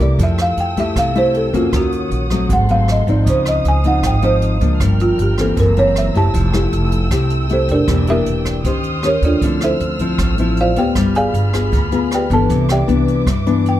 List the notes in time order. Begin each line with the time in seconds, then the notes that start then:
Already playing: C3 A#4 E5 D6
0.00 C2 A3 E4 G4 D5
0.19 F2 F3 A4 G5 E6, kick, closed hi-hat
0.23 E5
0.38 F5, cross-stick, closed hi-hat
0.57 F2 G5, closed hi-hat
0.77 A3 E4 G4 E5, kick, closed hi-hat
0.96 C2 C3 F5, kick, cross-stick, closed hi-hat
1.15 A3 E4 G4 C5, closed hi-hat
1.34 A4, closed hi-hat
1.53 F2 A#3 C#4 F4 F#4, kick, closed hi-hat
1.73 D#2 D#3 F#4 C#5 F#5 D#6, kick, cross-stick, closed hi-hat
1.92 closed hi-hat
2.11 A#1, closed hi-hat
2.30 F#3 A3 C4, kick, cross-stick, closed hi-hat
2.49 G#1 G#2 A4 F#5 C6, kick, closed hi-hat
2.69 F#3 A3 C4 F5, closed hi-hat
2.88 D#5, cross-stick, closed hi-hat
3.07 G#1 F3 C4 D#4 D5, kick, closed hi-hat
3.26 C#2 C#3 C5 F5 D#6, kick, closed hi-hat
3.46 D#5, cross-stick, closed hi-hat
3.65 C#2 G#5, closed hi-hat
3.84 F3 C4 D#4 F#5, kick, closed hi-hat
4.03 G#1 G#2 G5, kick, cross-stick, closed hi-hat
4.22 F3 C4 D#4 C5, closed hi-hat
4.42 closed hi-hat
4.61 C#2 F3 A#3 D4, kick, closed hi-hat
4.80 G1 G2 A#4 G5 F6, kick, cross-stick, closed hi-hat
5.00 F4, closed hi-hat
5.18 G1, closed hi-hat
5.22 G4
5.38 E3 A#3 C4 A4, kick, cross-stick, closed hi-hat
5.57 F#1 F#2 A#4 C5 A#5 E6, kick, closed hi-hat
5.76 E3 A#3 C4 C#5, closed hi-hat
5.96 E5, cross-stick, closed hi-hat
6.14 F#1 A3 E4 G4 A5, kick, closed hi-hat
6.33 F1 F3 A4 G5, kick, closed hi-hat
6.53 A3 E4 G4, cross-stick, closed hi-hat
6.72 F1, closed hi-hat
6.92 kick, closed hi-hat
7.11 C2 C3 A3 E4 G4, kick, cross-stick, closed hi-hat
7.30 closed hi-hat
7.49 A3 C4 E4 G4 A4 C5, closed hi-hat
7.68 F1 D4 G4 A#4 D5, kick, closed hi-hat
7.88 E1 E3 A#3 D4 G4 D5, kick, cross-stick, closed hi-hat
8.07 A#3 D4 E4 G4 A#4 E5, closed hi-hat
8.26 E1, closed hi-hat
8.45 kick, cross-stick, closed hi-hat
8.64 D#2 D#3 C#4 G4 C5 C6 D#6 F6, kick, closed hi-hat
8.83 closed hi-hat
9.03 C#4 G4 C5 C#5, cross-stick, closed hi-hat
9.07 A#4
9.22 D#2 D4 F4 A4 D5, kick, closed hi-hat
9.42 D2 D3 F3 C4 E4 C5 E6, kick, closed hi-hat
9.61 E4 A4 C5 E5, cross-stick, closed hi-hat
9.80 D2, closed hi-hat
9.99 F3 C4 E4, kick, closed hi-hat
10.18 A1 A2, kick, cross-stick, closed hi-hat
10.38 F3 C4 E4, closed hi-hat
10.57 C5 F5, closed hi-hat
10.61 F4 D5
10.76 D2 B3 F4 G4 B4 D5 G5, kick, closed hi-hat
10.95 G1 G3 G#4 B5, kick, cross-stick, closed hi-hat
11.15 G#4 D5 F5 G#5, closed hi-hat
11.34 G1, closed hi-hat
11.53 B3 F4 G#4, kick, cross-stick, closed hi-hat
11.72 D2 D3, kick, closed hi-hat
11.92 B3 F4 G#4, closed hi-hat
12.11 G4 B4 D5 G5, cross-stick, closed hi-hat
12.30 G1 E3 B3 D4 A5, kick, closed hi-hat
12.34 A4
12.50 C2 C3 B4 E5 D6, kick, closed hi-hat
12.69 G4 D5 E5 G5, cross-stick, closed hi-hat
12.87 C2 E3 B3 D4, closed hi-hat
13.07 kick, closed hi-hat
13.26 G2, kick, cross-stick, closed hi-hat
13.46 E3 B3 D4, closed hi-hat
13.66 G5, closed hi-hat